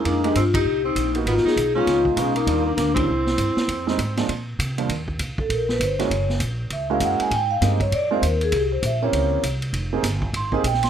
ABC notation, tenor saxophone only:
X:1
M:4/4
L:1/8
Q:"Swing" 1/4=198
K:Eb
V:1 name="Tenor saxophone"
B, B, C E2 C2 z | _C E2 _D2 z A, B,- | B, B, B, C4- C- | C6 z2 |
z8 | z8 | z8 | z8 |
z8 |]